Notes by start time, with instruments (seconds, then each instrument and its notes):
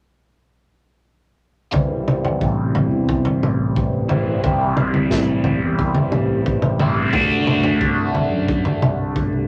1.72 fingered electric bass C2, synth drone C2 G2, overdriven electric guitar C3 E3 G3 C4 E4, kick, floor tom
2.08 mid tom
2.25 floor tom
2.41 fingered electric bass A1, kick
2.75 floor tom
2.91 fingered electric bass E2
3.09 kick
3.25 floor tom
3.42 fingered electric bass A1, mid tom
3.76 kick
3.93 fingered electric bass A1
4.09 overdriven electric guitar C3 E3 G3 C4 E4, floor tom
4.42 fingered electric bass C2, overdriven electric guitar C3 E3 G3 C4 E4, kick, floor tom
4.77 mid tom
4.94 floor tom
5.11 fingered electric bass A1, kick, snare
5.44 floor tom
5.62 fingered electric bass E2
5.79 kick
5.95 floor tom
6.12 fingered electric bass A1, mid tom
6.46 kick
6.62 fingered electric bass A1, mid tom
6.79 overdriven electric guitar C3 E3 G3 C4 E4, floor tom
7.13 fingered electric bass D2, overdriven electric guitar D3 A3 D4 F#4, kick, floor tom
7.47 mid tom
7.64 floor tom
7.81 fingered electric bass C2, kick
8.15 floor tom
8.32 fingered electric bass F#2
8.48 kick
8.65 floor tom
8.82 fingered electric bass C2, mid tom
9.16 kick
9.33 fingered electric bass C2